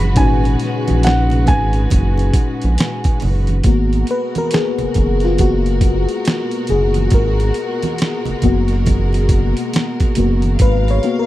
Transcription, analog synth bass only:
0.00 0.19 F#1 medium
0.18 0.56 G#1 loud
0.90 1.51 A#1 medium
1.50 1.88 G#1 medium
1.93 2.31 F#1 medium
2.64 2.78 A#1 medium
3.24 3.62 F#1 medium
3.66 4.04 G#1 loud
4.82 4.88 F#1 soft
4.97 6.07 F#1 medium
6.71 7.09 F#1 medium
7.13 7.52 G#1 loud
8.29 8.35 F#1 soft
8.45 9.54 F#1 loud
10.19 10.57 F#1 medium
10.61 11.00 G#1 loud

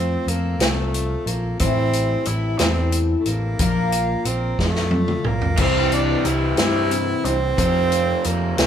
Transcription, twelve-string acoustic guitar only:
0.00 0.28 F3 medium
0.00 0.63 A3 medium
0.00 0.28 C4 medium
0.00 0.28 F4 medium
0.00 0.30 A4 medium
0.29 0.61 C4 medium
0.29 0.62 F4 medium
0.29 0.61 A4 medium
0.62 1.29 F3 medium
0.62 1.29 A3 medium
0.62 1.28 C4 medium
0.62 1.28 F4 medium
0.62 1.27 A4 medium
1.28 1.61 C4 soft
1.28 1.62 F4 soft
1.28 1.61 A4 soft
1.61 2.27 A2 medium
1.61 2.27 E3 medium
1.61 2.25 G3 medium
1.61 2.26 C4 medium
1.61 2.27 E4 loud
1.61 2.28 A4 loud
2.27 2.59 G3 medium
2.27 2.59 C4 medium
2.27 2.59 E4 medium
2.27 2.58 A4 medium
2.60 3.27 A2 medium
2.60 3.27 E3 medium
2.60 3.27 G3 medium
2.60 3.26 C4 medium
2.60 3.25 E4 medium
2.60 3.24 A4 medium
3.26 3.60 G3 soft
3.26 3.60 C4 soft
3.26 3.60 E4 soft
3.26 3.59 A4 soft
3.59 4.26 A#2 medium
3.59 4.26 F3 medium
3.59 4.25 A#3 medium
3.59 4.25 D4 medium
3.59 4.26 F4 medium
3.59 4.27 A#4 medium
4.26 4.59 A#3 medium
4.26 4.59 D4 medium
4.26 4.59 F4 medium
4.26 4.60 A#4 medium
4.61 5.27 A#2 medium
4.61 5.27 F3 soft
4.61 5.26 D4 medium
4.61 5.24 F4 medium
5.25 5.58 A#3 soft
5.25 5.57 D4 soft
5.25 5.59 F4 soft
5.25 5.59 A#4 soft
5.57 6.24 C3 medium
5.57 6.25 E3 medium
5.57 6.22 G3 medium
5.57 6.24 C4 medium
5.57 6.24 E4 medium
5.57 6.26 C5 medium
6.23 6.58 G3 medium
6.23 6.58 C4 medium
6.23 6.57 E4 medium
6.23 6.57 C5 medium
6.59 7.26 C3 medium
6.59 7.26 E3 medium
6.59 7.24 G3 medium
6.59 7.24 C4 medium
6.59 7.23 E4 medium
6.59 7.23 C5 medium
7.24 7.58 G3 soft
7.24 7.58 C4 soft
7.24 7.58 E4 soft
7.24 7.58 C5 soft
7.57 8.24 F3 medium
7.57 8.59 A3 medium
7.57 8.23 C4 medium
7.57 8.24 F4 medium
7.57 8.25 A4 medium
8.24 8.57 C4 medium
8.24 8.58 F4 medium
8.24 8.58 A4 medium
8.59 8.67 F3 medium
8.59 8.67 A3 medium
8.59 8.67 C4 medium
8.59 8.67 F4 medium
8.59 8.67 A4 medium

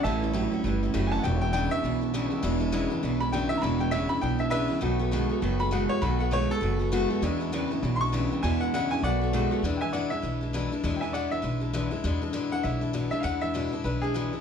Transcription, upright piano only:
0.03 0.89 E5 medium
0.03 0.91 A5 loud
1.07 1.09 G#5 medium
1.12 1.23 A5 loud
1.19 1.22 F#5 medium
1.24 1.40 G5 medium
1.41 1.51 G5 medium
1.53 1.70 G5 loud
1.71 2.58 E5 loud
3.20 3.32 B5 loud
3.32 3.50 G5 loud
3.49 3.62 E5 loud
3.57 3.60 A#5 medium
3.62 3.79 B5 medium
3.80 3.92 G5 medium
3.91 4.09 E5 loud
4.09 4.22 B5 loud
4.21 4.39 G5 medium
4.40 4.50 E5 medium
4.50 5.37 B4 loud
4.50 4.81 E5 loud
5.60 5.72 B5 loud
5.72 5.90 F#5 medium
5.89 6.02 C#5 loud
6.02 6.19 B5 loud
6.20 6.32 F#5 medium
6.33 6.50 C#5 loud
6.51 7.21 A4 loud
7.96 7.98 C6 medium
8.01 8.42 C#6 loud
8.43 8.60 G#5 medium
8.61 8.72 F#5 medium
8.74 8.91 F#5 loud
8.91 9.03 G#5 medium
9.04 9.59 D5 medium
9.04 9.62 F#5 loud
9.77 9.92 E5 medium
9.77 9.79 G5 medium
9.81 9.93 G#5 medium
9.93 10.09 D5 medium
9.93 10.10 F#5 medium
10.10 10.69 E5 medium
10.96 10.98 G5 soft
11.01 11.12 E5 medium
11.01 11.13 G#5 medium
11.13 11.30 D5 medium
11.13 11.31 F#5 medium
11.31 11.90 E5 medium
12.52 12.64 F#5 loud
12.63 13.10 E5 medium
13.11 13.23 E5 medium
13.20 13.22 F5 medium
13.24 13.41 F#5 medium
13.42 13.83 E5 medium
13.84 14.02 B4 medium
14.02 14.41 G#4 medium

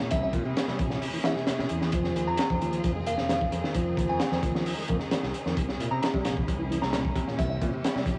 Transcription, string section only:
0.00 1.89 A#3 medium
0.00 1.89 C#4 medium
0.00 1.89 E4 medium
0.00 7.35 G#4 loud
1.92 5.53 D#3 medium
1.92 5.53 C4 medium
1.92 3.73 F4 medium
3.75 5.55 D#4 medium
5.57 8.19 A#3 medium
5.57 8.19 C#4 medium
5.57 8.19 E4 medium
7.39 8.19 G4 loud

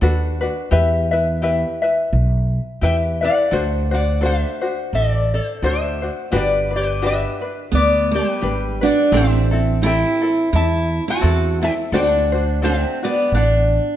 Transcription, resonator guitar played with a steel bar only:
2.84 2.96 E5 medium
2.84 2.94 G5 medium
3.24 3.89 D5 medium
3.24 3.93 F#5 medium
3.94 4.22 D5 medium
3.94 4.24 F#5 medium
4.25 4.90 C5 medium
4.25 4.95 E5 medium
4.95 5.30 A4 medium
4.95 5.33 D5 medium
5.34 5.61 A4 medium
5.34 5.64 C5 medium
5.66 6.30 C5 medium
5.66 6.36 E5 medium
6.36 6.71 B4 medium
6.36 6.75 D5 medium
6.76 7.02 G4 medium
6.76 7.05 B4 medium
7.06 7.70 B4 medium
7.06 7.74 E5 medium
7.75 8.11 B4 medium
7.75 8.14 D5 medium
8.15 8.79 G4 medium
8.15 8.84 B4 medium
8.84 9.12 D5 medium
8.84 9.14 F#5 medium
9.16 9.80 C5 medium
9.16 9.80 E5 loud
9.86 10.50 E5 medium
9.86 10.55 G5 medium
10.55 11.05 E5 medium
10.55 11.09 A5 medium
11.10 11.59 F#5 medium
11.10 11.64 A5 loud
11.64 11.72 E5 medium
11.64 11.72 G5 medium
11.94 12.59 D5 medium
11.94 12.06 G5 medium
12.06 12.66 F#5 medium
12.64 13.00 C5 medium
12.64 13.04 E5 medium
13.04 13.31 B4 medium
13.04 13.33 D5 medium
13.34 13.96 D5 medium
13.34 13.96 F#5 medium

